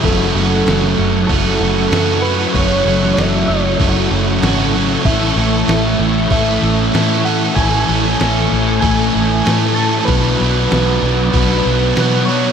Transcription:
<<
  \new Staff \with { instrumentName = "Analog synth pad" } { \time 4/4 \key a \lydian \tempo 4 = 96 << { <e' a' cis'''>1~ | <e' a' cis'''>1~ | <e' a' cis'''>1~ | <e' a' cis'''>1 |
<b' fis''>1 | } \\ { fis''1~ | fis''1 | e''1~ | e''1 |
a''1 | } >> }
  \new Staff \with { instrumentName = "Soft synth lead" } { \time 4/4 \key a \lydian a'2 a'4. b'8 | cis''4 e''8 cis''4 r4. | e''2 e''4. fis''8 | gis''2 gis''4. a''8 |
b'2 b'4. cis''8 | }
  \new Staff \with { instrumentName = "Overdriven electric guitar" } { \time 4/4 \key a \lydian <fis, cis fis a cis' fis'>8 <fis a cis' fis'>4. <fis, cis fis a cis' fis'>4 <fis a cis' fis'>8 <fis a cis' fis'>8 | <fis, cis fis a cis' fis'>8 <fis a cis' fis'>4. <fis, cis fis a cis' fis'>4 <fis a cis' fis'>8 <fis a cis' fis'>8 | <a, e a cis' a'>8 <a cis' a'>4. <a, e a cis' a'>4 <e a cis' a'>8 <a cis' a'>8 | <a, e a cis' a'>8 <a cis' a'>4. <a, e a cis' a'>4 <e a cis' a'>8 <a cis' a'>8 |
<b, fis b d' fis'>8 <b d' fis'>4. <b, fis b d' fis'>4 <fis b d' fis'>8 <b d' fis'>8 | }
  \new Staff \with { instrumentName = "Distorted electric guitar" } { \clef bass \time 4/4 \key a \lydian <fis, cis fis>8 <cis fis>8 <fis, cis fis>8 <cis fis>8 <fis, cis fis>8 <cis fis>8 <fis, cis fis>8 <cis fis>8 | <fis, cis fis>8 <cis fis>8 <fis, cis fis>8 <cis fis>8 <fis, cis fis>8 <cis fis>8 <fis, cis fis>8 <cis fis>8 | <a, e a>8 <e a>8 <a, e a>8 <e a>8 <a, e a>8 <e a>8 <a, e a>8 <e a>8 | <a, e a>8 <e a>8 <a, e a>8 <e a>8 <a, e a>8 <e a>8 <a, e a>8 <e a>8 |
<b, fis b>8 <fis b>8 <b, fis b>8 <fis b>8 <b, fis b>8 <fis b>8 <b, fis b>8 <fis b>8 | }
  \new Staff \with { instrumentName = "Fingered electric bass" } { \clef bass \time 4/4 \key a \lydian fis,,8 fis,,8 fis,,8 fis,,8 fis,,8 fis,,8 fis,4 | fis,,8 fis,,8 fis,,8 fis,,8 fis,,8 fis,,8 gis,,4 | a,,8 a,,8 a,,8 a,,8 a,,8 a,,8 a,4 | a,,8 a,,8 a,,8 a,,8 a,,8 a,,8 a,4 |
b,,8 b,,8 b,,8 b,,8 b,,8 b,,8 b,4 | }
  \new DrumStaff \with { instrumentName = "Drums" } \drummode { \time 4/4 <cymc bd>4 <cymc sn>4 <cymc bd>4 <cymc sn>4 | <cymc bd>8. sn16 <cymc sn>4 <cymc bd>4 <cymc sn>4 | <cymc bd>4 <cymc sn>4 <cymc bd>4 <cymc sn>4 | <cymc bd>8. sn16 <cymc sn>4 <cymc bd>4 <cymc sn>4 |
<cymc bd>4 <cymc sn>4 <cymc bd>4 <cymc sn>4 | }
>>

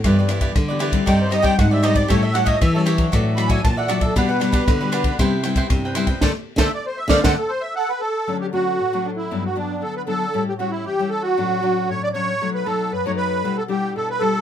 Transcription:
<<
  \new Staff \with { instrumentName = "Accordion" } { \time 4/4 \key d \mixolydian \tempo 4 = 116 << { r2 g''16 c''16 ees''16 g''16 fis''16 e''16 ees''16 d''16 | cis''16 e''16 fis''16 ees''16 e''16 a'16 r4 b''16 aes''16 a''16 fis''16 d''16 a'16 | b'2 r2 | r8. e''16 d''16 c''16 e''16 f''16 fis''16 a'16 c''16 e''16 fis''8 r8 |
\key d \major r1 | r1 | r1 | } \\ { r1 | r1 | r1 | r2. a'16 b'16 a'8~ |
a'16 g'16 fis'4 d'16 e'8 fis'16 d'8 a'16 b'16 a'8~ | a'16 g'16 fis'16 e'16 g'8 a'16 fis'4~ fis'16 cis''16 d''16 cis''8~ | cis''16 b'16 a'8 b'16 cis''16 b'8. a'16 g'8 a'16 b'16 a'8 | } >> }
  \new Staff \with { instrumentName = "Cavaquinho" } { \time 4/4 \key d \mixolydian <e' g' b' d''>16 <g' b' d''>16 <e' g' b' d''>16 <e' g' b' d''>16 r16 <g' b' d''>16 <e' g' b' d''>8 <ees' g' c'' d''>8 <ees' g' c'' d''>16 <ees' g' c'' d''>16 r16 <g' c'' d''>16 <ees' g' c'' d''>16 <g' c'' d''>16 | <g' a' cis'' e''>16 <a' cis'' e''>16 <g' a' cis'' e''>16 <g' a' cis'' e''>16 r16 <a' cis'' e''>16 <g' a' cis'' e''>8 <fis' a' d'' e''>8 <fis' a' d'' e''>16 <fis' a' d'' e''>16 r16 <a' d'' e''>16 <fis' a' d'' e''>16 <a' d'' e''>16 | <d' g' b' fis''>16 <g' b' fis''>16 <d' g' b' fis''>16 <d' g' b' fis''>16 r16 <g' b' fis''>16 <d' g' b' fis''>8 <e' b' c'' g''>8 <e' b' c'' g''>16 <e' b' c'' g''>16 r16 <b' c'' g''>16 <e' b' c'' g''>16 <b' c'' g''>16 | <a' c'' d''>16 r8 <a' c'' d''>16 r8. <a' c'' d''>16 <a' c'' d''>16 r4. r16 |
\key d \major r1 | r1 | r1 | }
  \new Staff \with { instrumentName = "Nylon-string guitar" } { \time 4/4 \key d \mixolydian << { <e b d'>8 <e b d'>8 r16 <e b d'>8 <g c' ees'>8. <g c' ees'>16 <g c' ees'>8. <g c' ees'>8 | <g cis' e'>16 r16 <g cis' e'>8 r16 <g cis' e'>8 <fis d' e'>8. <fis d' e'>8. r16 <fis d' e'>8 | <g d' fis'>8 <g d' fis'>8. <g d' fis'>8. <g b e'>16 r16 <g b e'>4 <g b e'>8 | <a c' d'>16 r8 <a c' d'>16 r8. <a c' d'>16 <a c' d'>16 r4. r16 |
\key d \major <fis a cis'>8 <fis a cis'>8 r16 <fis a cis'>8. <fis b d'>16 r16 <fis b d'>4 <fis b d'>16 r16 | <g cis' e'>16 r16 <g cis' e'>8. <g cis' e'>8. <fis cis' d'>8 <fis cis' d'>4 <fis cis' d'>16 r16 | <fis a dis'>8 <fis a dis'>8 r16 <fis a dis'>8. <g d' e'>16 r16 <g d' e'>4 <g d' e'>8 | } \\ { g,4 d4 c4 c4 | a,4 e4 a,4 r4 | b,4 b,4 c4 g,4 | r1 |
d4 a,4 g,4 d4 | a,4 e4 a,4 a,4 | b,4 fis,4 b,4 b,4 | } >> }
  \new Staff \with { instrumentName = "Nylon-string guitar" } { \clef bass \time 4/4 \key d \mixolydian g,4 d4 g,4 aes,4 | a,4 e4 a,4 bes,4 | b,4 d4 c4 c4 | d16 r8 d16 r8. d16 d16 r4. r16 |
\key d \major r1 | r1 | r1 | }
  \new DrumStaff \with { instrumentName = "Drums" } \drummode { \time 4/4 <bd cymr ss>8 <cymr ss>16 <bd cymr>16 <bd cymr ss>8 <cymr ss>16 <bd cymr>16 <bd cymr ss>8 <cymr ss>16 <bd cymr>16 <bd cymr ss>8 <cymr ss>16 <bd cymr>16 | <bd cymr ss>8 <cymr ss>16 <bd cymr>16 <bd cymr ss>8 <cymr ss>16 <bd cymr>16 <bd cymr ss>8 <cymr ss>16 <bd cymr>16 <bd cymr ss>8 <cymr ss>16 <bd cymr>16 | <bd cymr ss>8 <cymr ss>16 <bd cymr>16 <bd cymr ss>8 <cymr ss>16 <bd cymr>16 <bd cymr ss>8 <cymr ss>16 <bd cymr>16 <bd cymr ss>8 <cymr ss>16 <bd cymr>16 | <bd sn>8. <bd sn>16 r8. <bd sn>16 <bd sn>4 r4 |
r4 r4 r4 r4 | r4 r4 r4 r4 | r4 r4 r4 r4 | }
>>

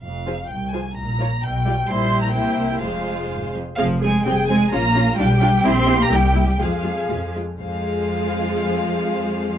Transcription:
<<
  \new Staff \with { instrumentName = "Violin section" } { \time 2/4 \key f \minor \tempo 4 = 126 f''4 g''8 aes''8 | bes''4 g''4 | c'''8. bes''16 g''8. g''16 | f''4. r8 |
f''8 aes''8 g''8 aes''8 | bes''4 g''4 | c'''8. bes''16 g''8. g''16 | f''4. r8 |
f''2~ | f''2 | }
  \new Staff \with { instrumentName = "Violin section" } { \time 2/4 \key f \minor r8 <aes' c''>8 r8 <aes' c''>8 | r8 <bes' des''>8 r8 <g' d''>8 | <g' c''>4 <g' c''>4 | <aes' c''>4. r8 |
r4 aes'4 | f'4 g'4~ | g'2 | aes'4. r8 |
<aes' c''>2~ | <aes' c''>2 | }
  \new Staff \with { instrumentName = "Viola section" } { \time 2/4 \key f \minor r8 <f f'>8 r8 <f f'>8 | r8 <f f'>8 r8 <g f'>8 | <g e'>4 <bes e'>4 | <aes f'>4. r8 |
<c' aes'>8 <c' aes'>8 <c' aes'>8 <c' aes'>8 | <des' f'>8 <des' f'>8 <d' f'>8 <d' f'>8 | <c' e'>8 <c' e'>8 <bes e'>8 <bes e'>8 | <aes f'>8 <aes f'>8 <aes f'>8 <aes f'>8 |
<aes f'>2~ | <aes f'>2 | }
  \new Staff \with { instrumentName = "Cello section" } { \clef bass \time 2/4 \key f \minor f,4 c,4 | bes,4 b,4 | bes,4 c4 | f,4 aes,8 f,8 |
f8 aes8 g8 aes8 | bes4 g4 | c'8. bes16 g8. g16 | f4. r8 |
f2~ | f2 | }
  \new Staff \with { instrumentName = "Double bass section" } { \clef bass \time 2/4 \key f \minor f,,4 c,4 | bes,,4 b,,4 | bes,,4 c,4 | f,,4. r8 |
f,,4 f,,4 | bes,,4 b,,4 | bes,,4 c,4 | f,4 f,4 |
f,2~ | f,2 | }
>>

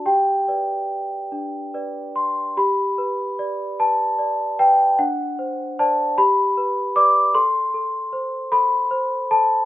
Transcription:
\new Staff \with { instrumentName = "Celesta" } { \time 6/8 \key g \major \tempo 4. = 50 << { g''2~ g''8 c'''8 | b''4. a''4 g''8 | fis''4 a''8 b''4 d'''8 | c'''4. b''4 a''8 | } \\ { g'8 <b' d''>4 d'8 <b' d''>4 | g'8 b'8 d''8 b'8 d''8 b'8 | d'8 c''8 <c'' d''>8 g'8 b'8 <b' d''>8 | a'8 a'8 c''8 a'8 c''8 a'8 | } >> }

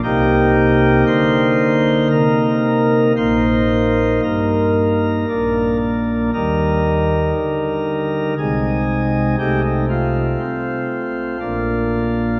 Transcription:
<<
  \new Staff \with { instrumentName = "Pipe organ" } { \time 3/4 \key ees \major \tempo 4 = 58 << { g'4 c''4 bes'4 | c''4 bes'4. r8 | bes'2 aes'4 | g'16 ees'16 f'2~ f'8 | } \\ { <bes ees'>2. | <bes ees'>2 <bes d'>4 | <g ees'>2 <aes ees'>4 | <a ees'>2 <bes d'>4 | } >> }
  \new Staff \with { instrumentName = "Pipe organ" } { \clef bass \time 3/4 \key ees \major <c, c>4 d4 c4 | <bes,, bes,>4 g,4 <bes,, bes,>4 | <ees, ees>4 d4 <c, c>4 | <c, c>4 c'4 <bes,, bes,>4 | }
>>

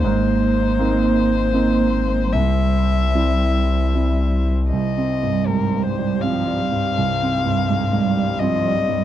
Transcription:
<<
  \new Staff \with { instrumentName = "Violin" } { \time 3/4 \key c \phrygian \tempo 4 = 80 c''2. | e''2~ e''8. r16 | ees''4 bes'8 c''8 f''4~ | f''2 ees''4 | }
  \new Staff \with { instrumentName = "String section" } { \time 3/4 \key c \phrygian << { c''2.~ | c''2. | c''2.~ | c''2. | } \\ { <bes ees'>2. | <g e'>2. | <ees' g'>2.~ | <ees' g'>2. | } >> }
  \new Staff \with { instrumentName = "Cello" } { \clef bass \time 3/4 \key c \phrygian bes2. | g2~ g8. r16 | g2 f8 g8~ | g4 aes8 g8 f8 g8 | }
  \new Staff \with { instrumentName = "Grand piano" } { \clef bass \time 3/4 \key c \phrygian aes,4 <bes c' ees'>4 <bes c' ees'>4 | c,4 <g c' e'>4 <g c' e'>4 | \tuplet 3/2 { c,8 c'8 g,8 aes,8 g,8 g8 c'8 g8 g,8 } | \tuplet 3/2 { c,8 c'8 g,8 aes,8 g,8 g8 c'8 g8 g,8 } | }
  \new Staff \with { instrumentName = "Sub bass" } { \clef bass \time 3/4 \key c \phrygian aes,,2. | c,2. | r2. | r2. | }
>>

